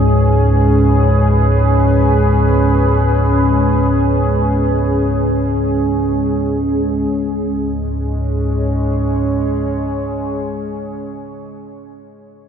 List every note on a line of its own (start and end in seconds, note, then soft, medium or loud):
0.00 7.08 C#2 medium
0.00 7.10 G#2 medium
0.00 7.08 G#3 medium
0.00 7.10 C#4 medium
0.00 7.12 F#4 medium
0.00 7.09 G#4 medium
0.00 7.11 B4 medium
7.09 10.87 C#2 medium
7.09 10.89 G#2 medium
7.09 10.87 G#3 medium
7.26 11.04 C#4 medium
7.41 11.19 G#4 medium
7.57 11.35 C#5 medium